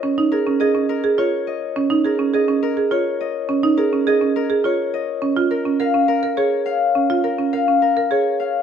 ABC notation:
X:1
M:3/4
L:1/16
Q:1/4=104
K:Ebdor
V:1 name="Harp"
[Bdef]2 B2 e2 B2 d2 e2 | z2 B2 e2 B2 d2 e2- | e2 B2 e2 B2 d2 e2 | z2 B2 f2 B2 d2 f2- |
f2 B2 f2 B2 d2 f2 |]
V:2 name="Marimba"
D E A D A D z A F z3 | D E A D A D z A F z3 | D E A D A D z A F z3 | D F B D B D z B A z3 |
D F B D B D z B A z3 |]